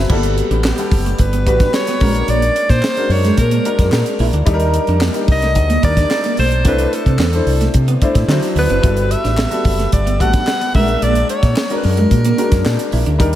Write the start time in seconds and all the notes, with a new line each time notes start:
Already playing: F#3 C4 E4 A#4 B4 E5 A5 B5
0.10 G1 G3 A#3 E4 F#4 A4, kick, crash
0.16 B3
0.23 closed hi-hat
0.37 muted clean electric guitar stroke, closed hi-hat
0.50 A1 D4, closed hi-hat
0.64 B3 G4, snare, clap
0.78 G3 B3 A4 F#5, closed hi-hat
0.91 F#1, muted clean electric guitar stroke, kick, open hi-hat
1.06 A3, closed hi-hat
1.18 G1 B4, kick, closed hi-hat
1.33 B3, closed hi-hat
1.46 A1 G3 B3 F#4 B4, muted clean electric guitar stroke, kick, closed hi-hat
1.60 D4, kick, snare, closed hi-hat
1.74 C#5, muted clean electric guitar stroke, snare, clap
1.87 B3, snare, closed hi-hat
2.00 A#1 G#3 C#4 F#4 A#4, kick, open hi-hat
2.08 D4
2.14 closed hi-hat
2.28 A#1 A#3 D5, closed hi-hat
2.42 closed hi-hat
2.56 muted clean electric guitar stroke, closed hi-hat
2.69 A#2 D4 C5, kick, snare, closed hi-hat
2.83 A#3, snare, clap
2.96 G#3 D4 F#4 A#4, closed hi-hat
3.09 F#2 C#5, muted clean electric guitar stroke, open hi-hat
3.24 G#3, snare, closed hi-hat
3.37 A#2 A#4, kick, closed hi-hat
3.51 A#3, closed hi-hat
3.65 G#3 D4 F#4 A#4, muted clean electric guitar stroke, closed hi-hat
3.79 F#2 D4, kick, snare, closed hi-hat
3.91 A#2, muted clean electric guitar stroke, snare, clap
4.06 closed hi-hat
4.19 A#1 E4, open hi-hat
4.33 D2 D4, closed hi-hat
4.46 D#2 G3 D4 D#4 A4, kick, closed hi-hat
4.54 A#4
4.60 closed hi-hat
4.74 muted clean electric guitar stroke, closed hi-hat
4.87 F2 D4, closed hi-hat
5.01 A#3, snare, clap
5.13 G3 D4 D#4 A#4, closed hi-hat
5.28 C2, muted clean electric guitar stroke, kick, open hi-hat
5.32 D#5
5.42 A3, snare, closed hi-hat
5.55 D2, kick, closed hi-hat
5.70 A#3, closed hi-hat
5.83 D#2 G3 D4 D#4 A#4 D5, muted clean electric guitar stroke, kick, closed hi-hat
5.97 D4, kick, snare, closed hi-hat
6.11 muted clean electric guitar stroke, snare, clap
6.24 A#3, closed hi-hat
6.37 B1 A3 C5, open hi-hat
6.51 closed hi-hat
6.64 C2 A3 C4 D4 E4 B4 C5, kick, closed hi-hat
6.78 closed hi-hat
6.93 A4, muted clean electric guitar stroke, closed hi-hat
7.06 C3 C4, kick, closed hi-hat
7.18 E2 B3, snare, clap
7.33 A3 D4 E4 C5, closed hi-hat
7.46 C2, muted clean electric guitar stroke, open hi-hat
7.61 A3, snare, closed hi-hat
7.74 C3, kick, closed hi-hat
7.88 B3, closed hi-hat
8.02 A3 D4 E4 C5, muted clean electric guitar stroke, kick, closed hi-hat
8.15 A2 C4, kick, snare, closed hi-hat
8.28 D3 F#3 D4 E4 C5, muted clean electric guitar stroke, snare, clap
8.43 snare, closed hi-hat
8.55 D2 E4 B4, open hi-hat
8.69 F#1 C4, closed hi-hat
8.82 G1 G3 B3 E4 F#4 A4, kick, closed hi-hat
8.97 closed hi-hat
9.11 E5, muted clean electric guitar stroke, closed hi-hat
9.24 A1 D4, snare, closed hi-hat
9.37 B3, snare, clap
9.50 G3 B3 F#4 A4, closed hi-hat
9.65 F#1, muted clean electric guitar stroke, kick, open hi-hat
9.79 A3, snare, closed hi-hat
9.92 G1 D5, kick, closed hi-hat
10.06 B3, closed hi-hat
10.20 A1 G3 A3 F#4 A4 F#5, muted clean electric guitar stroke, kick, closed hi-hat
10.27 B3
10.33 D4, kick, snare, closed hi-hat
10.47 muted clean electric guitar stroke, snare, clap
10.61 B3, closed hi-hat
10.74 A#1 G#3 C#4 F#4 A#4 E5, kick, open hi-hat
10.82 D4
10.88 closed hi-hat
11.02 A#1 A#3 D5, closed hi-hat
11.15 closed hi-hat
11.29 C#5, muted clean electric guitar stroke, closed hi-hat
11.43 A#2 D4, kick, snare, closed hi-hat
11.56 A#3, snare, clap
11.70 G#3 D4 F#4 A#4, closed hi-hat
11.78 B4
11.83 F#2 A#4, muted clean electric guitar stroke, open hi-hat
11.97 G#3, closed hi-hat
12.11 A#2, kick, closed hi-hat
12.25 A#3, closed hi-hat
12.37 G#3 C#4 F#4 A#4, muted clean electric guitar stroke, closed hi-hat
12.44 D4
12.52 F#2 D4, kick, snare, closed hi-hat
12.65 A#2, muted clean electric guitar stroke, snare, clap
12.79 closed hi-hat
12.92 A#1 E4, open hi-hat
13.06 D2 D4, closed hi-hat
13.18 D#2 G3 D4 D#4 A#4, kick, closed hi-hat